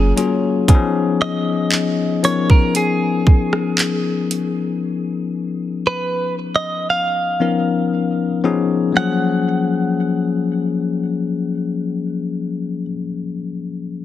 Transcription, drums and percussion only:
0, 0, Header, 1, 2, 480
1, 0, Start_track
1, 0, Key_signature, 6, "major"
1, 0, Tempo, 1034483
1, 316, Time_signature, 4, 2, 24, 8
1, 6518, End_track
2, 0, Start_track
2, 0, Title_t, "Drums"
2, 81, Note_on_c, 9, 42, 69
2, 128, Note_off_c, 9, 42, 0
2, 317, Note_on_c, 9, 36, 123
2, 319, Note_on_c, 9, 42, 83
2, 363, Note_off_c, 9, 36, 0
2, 365, Note_off_c, 9, 42, 0
2, 798, Note_on_c, 9, 39, 110
2, 845, Note_off_c, 9, 39, 0
2, 1039, Note_on_c, 9, 42, 57
2, 1085, Note_off_c, 9, 42, 0
2, 1158, Note_on_c, 9, 36, 88
2, 1205, Note_off_c, 9, 36, 0
2, 1275, Note_on_c, 9, 42, 78
2, 1322, Note_off_c, 9, 42, 0
2, 1516, Note_on_c, 9, 36, 83
2, 1562, Note_off_c, 9, 36, 0
2, 1637, Note_on_c, 9, 37, 97
2, 1684, Note_off_c, 9, 37, 0
2, 1756, Note_on_c, 9, 39, 126
2, 1760, Note_on_c, 9, 42, 73
2, 1802, Note_off_c, 9, 39, 0
2, 1806, Note_off_c, 9, 42, 0
2, 2000, Note_on_c, 9, 42, 68
2, 2046, Note_off_c, 9, 42, 0
2, 6518, End_track
0, 0, End_of_file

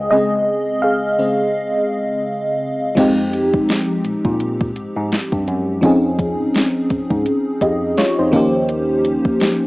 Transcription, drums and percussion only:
0, 0, Header, 1, 2, 480
1, 0, Start_track
1, 0, Key_signature, -4, "minor"
1, 0, Tempo, 714286
1, 77, Time_signature, 4, 2, 24, 8
1, 6497, End_track
2, 0, Start_track
2, 0, Title_t, "Drums"
2, 1996, Note_on_c, 9, 36, 109
2, 1996, Note_on_c, 9, 49, 98
2, 1997, Note_on_c, 9, 42, 66
2, 2063, Note_off_c, 9, 49, 0
2, 2064, Note_off_c, 9, 36, 0
2, 2064, Note_off_c, 9, 42, 0
2, 2240, Note_on_c, 9, 42, 68
2, 2307, Note_off_c, 9, 42, 0
2, 2377, Note_on_c, 9, 36, 110
2, 2444, Note_off_c, 9, 36, 0
2, 2478, Note_on_c, 9, 42, 65
2, 2486, Note_on_c, 9, 38, 118
2, 2545, Note_off_c, 9, 42, 0
2, 2553, Note_off_c, 9, 38, 0
2, 2718, Note_on_c, 9, 42, 69
2, 2785, Note_off_c, 9, 42, 0
2, 2854, Note_on_c, 9, 36, 100
2, 2922, Note_off_c, 9, 36, 0
2, 2957, Note_on_c, 9, 42, 79
2, 3024, Note_off_c, 9, 42, 0
2, 3096, Note_on_c, 9, 36, 108
2, 3163, Note_off_c, 9, 36, 0
2, 3198, Note_on_c, 9, 42, 71
2, 3266, Note_off_c, 9, 42, 0
2, 3440, Note_on_c, 9, 42, 74
2, 3444, Note_on_c, 9, 38, 108
2, 3507, Note_off_c, 9, 42, 0
2, 3512, Note_off_c, 9, 38, 0
2, 3576, Note_on_c, 9, 36, 92
2, 3643, Note_off_c, 9, 36, 0
2, 3680, Note_on_c, 9, 42, 56
2, 3747, Note_off_c, 9, 42, 0
2, 3917, Note_on_c, 9, 36, 106
2, 3918, Note_on_c, 9, 42, 66
2, 3985, Note_off_c, 9, 36, 0
2, 3985, Note_off_c, 9, 42, 0
2, 4159, Note_on_c, 9, 36, 104
2, 4161, Note_on_c, 9, 42, 74
2, 4226, Note_off_c, 9, 36, 0
2, 4228, Note_off_c, 9, 42, 0
2, 4398, Note_on_c, 9, 42, 70
2, 4407, Note_on_c, 9, 38, 123
2, 4466, Note_off_c, 9, 42, 0
2, 4474, Note_off_c, 9, 38, 0
2, 4637, Note_on_c, 9, 42, 67
2, 4639, Note_on_c, 9, 36, 93
2, 4705, Note_off_c, 9, 42, 0
2, 4706, Note_off_c, 9, 36, 0
2, 4775, Note_on_c, 9, 36, 100
2, 4842, Note_off_c, 9, 36, 0
2, 4877, Note_on_c, 9, 42, 80
2, 4945, Note_off_c, 9, 42, 0
2, 5116, Note_on_c, 9, 36, 92
2, 5120, Note_on_c, 9, 42, 69
2, 5183, Note_off_c, 9, 36, 0
2, 5187, Note_off_c, 9, 42, 0
2, 5359, Note_on_c, 9, 42, 65
2, 5364, Note_on_c, 9, 38, 107
2, 5426, Note_off_c, 9, 42, 0
2, 5431, Note_off_c, 9, 38, 0
2, 5597, Note_on_c, 9, 36, 103
2, 5599, Note_on_c, 9, 42, 59
2, 5665, Note_off_c, 9, 36, 0
2, 5666, Note_off_c, 9, 42, 0
2, 5838, Note_on_c, 9, 42, 66
2, 5905, Note_off_c, 9, 42, 0
2, 6080, Note_on_c, 9, 42, 71
2, 6147, Note_off_c, 9, 42, 0
2, 6217, Note_on_c, 9, 36, 104
2, 6284, Note_off_c, 9, 36, 0
2, 6319, Note_on_c, 9, 42, 72
2, 6327, Note_on_c, 9, 38, 126
2, 6386, Note_off_c, 9, 42, 0
2, 6394, Note_off_c, 9, 38, 0
2, 6497, End_track
0, 0, End_of_file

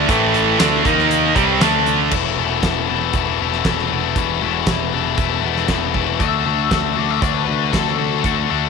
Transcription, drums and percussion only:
0, 0, Header, 1, 2, 480
1, 0, Start_track
1, 0, Tempo, 510638
1, 76, Time_signature, 4, 2, 24, 8
1, 8171, End_track
2, 0, Start_track
2, 0, Title_t, "Drums"
2, 83, Note_on_c, 9, 36, 109
2, 84, Note_on_c, 9, 42, 92
2, 177, Note_off_c, 9, 36, 0
2, 178, Note_off_c, 9, 42, 0
2, 322, Note_on_c, 9, 42, 70
2, 416, Note_off_c, 9, 42, 0
2, 560, Note_on_c, 9, 42, 113
2, 562, Note_on_c, 9, 54, 90
2, 564, Note_on_c, 9, 38, 127
2, 654, Note_off_c, 9, 42, 0
2, 656, Note_off_c, 9, 54, 0
2, 658, Note_off_c, 9, 38, 0
2, 802, Note_on_c, 9, 36, 113
2, 808, Note_on_c, 9, 42, 75
2, 896, Note_off_c, 9, 36, 0
2, 902, Note_off_c, 9, 42, 0
2, 930, Note_on_c, 9, 38, 33
2, 1024, Note_off_c, 9, 38, 0
2, 1041, Note_on_c, 9, 42, 97
2, 1135, Note_off_c, 9, 42, 0
2, 1278, Note_on_c, 9, 36, 100
2, 1283, Note_on_c, 9, 42, 73
2, 1372, Note_off_c, 9, 36, 0
2, 1377, Note_off_c, 9, 42, 0
2, 1514, Note_on_c, 9, 42, 84
2, 1518, Note_on_c, 9, 38, 111
2, 1518, Note_on_c, 9, 54, 90
2, 1608, Note_off_c, 9, 42, 0
2, 1612, Note_off_c, 9, 38, 0
2, 1612, Note_off_c, 9, 54, 0
2, 1752, Note_on_c, 9, 42, 69
2, 1846, Note_off_c, 9, 42, 0
2, 1986, Note_on_c, 9, 49, 88
2, 1991, Note_on_c, 9, 36, 91
2, 2080, Note_off_c, 9, 49, 0
2, 2085, Note_off_c, 9, 36, 0
2, 2469, Note_on_c, 9, 42, 61
2, 2470, Note_on_c, 9, 36, 77
2, 2473, Note_on_c, 9, 38, 107
2, 2563, Note_off_c, 9, 42, 0
2, 2564, Note_off_c, 9, 36, 0
2, 2567, Note_off_c, 9, 38, 0
2, 2945, Note_on_c, 9, 42, 61
2, 2947, Note_on_c, 9, 36, 103
2, 3039, Note_off_c, 9, 42, 0
2, 3041, Note_off_c, 9, 36, 0
2, 3315, Note_on_c, 9, 38, 31
2, 3409, Note_off_c, 9, 38, 0
2, 3427, Note_on_c, 9, 42, 60
2, 3430, Note_on_c, 9, 36, 79
2, 3431, Note_on_c, 9, 38, 102
2, 3521, Note_off_c, 9, 42, 0
2, 3524, Note_off_c, 9, 36, 0
2, 3525, Note_off_c, 9, 38, 0
2, 3557, Note_on_c, 9, 38, 30
2, 3651, Note_off_c, 9, 38, 0
2, 3908, Note_on_c, 9, 42, 56
2, 3909, Note_on_c, 9, 36, 101
2, 4002, Note_off_c, 9, 42, 0
2, 4003, Note_off_c, 9, 36, 0
2, 4385, Note_on_c, 9, 42, 58
2, 4387, Note_on_c, 9, 36, 76
2, 4389, Note_on_c, 9, 38, 114
2, 4479, Note_off_c, 9, 42, 0
2, 4481, Note_off_c, 9, 36, 0
2, 4483, Note_off_c, 9, 38, 0
2, 4865, Note_on_c, 9, 42, 60
2, 4868, Note_on_c, 9, 36, 111
2, 4959, Note_off_c, 9, 42, 0
2, 4962, Note_off_c, 9, 36, 0
2, 5233, Note_on_c, 9, 38, 32
2, 5327, Note_off_c, 9, 38, 0
2, 5341, Note_on_c, 9, 42, 53
2, 5345, Note_on_c, 9, 36, 76
2, 5345, Note_on_c, 9, 38, 93
2, 5435, Note_off_c, 9, 42, 0
2, 5439, Note_off_c, 9, 36, 0
2, 5439, Note_off_c, 9, 38, 0
2, 5587, Note_on_c, 9, 36, 81
2, 5681, Note_off_c, 9, 36, 0
2, 5828, Note_on_c, 9, 36, 95
2, 5831, Note_on_c, 9, 42, 50
2, 5922, Note_off_c, 9, 36, 0
2, 5925, Note_off_c, 9, 42, 0
2, 6308, Note_on_c, 9, 36, 80
2, 6308, Note_on_c, 9, 42, 57
2, 6312, Note_on_c, 9, 38, 105
2, 6402, Note_off_c, 9, 36, 0
2, 6402, Note_off_c, 9, 42, 0
2, 6406, Note_off_c, 9, 38, 0
2, 6788, Note_on_c, 9, 36, 117
2, 6798, Note_on_c, 9, 42, 54
2, 6882, Note_off_c, 9, 36, 0
2, 6892, Note_off_c, 9, 42, 0
2, 7268, Note_on_c, 9, 36, 80
2, 7272, Note_on_c, 9, 42, 60
2, 7276, Note_on_c, 9, 38, 99
2, 7362, Note_off_c, 9, 36, 0
2, 7366, Note_off_c, 9, 42, 0
2, 7370, Note_off_c, 9, 38, 0
2, 7395, Note_on_c, 9, 38, 32
2, 7489, Note_off_c, 9, 38, 0
2, 7747, Note_on_c, 9, 36, 97
2, 7747, Note_on_c, 9, 42, 52
2, 7841, Note_off_c, 9, 36, 0
2, 7841, Note_off_c, 9, 42, 0
2, 8171, End_track
0, 0, End_of_file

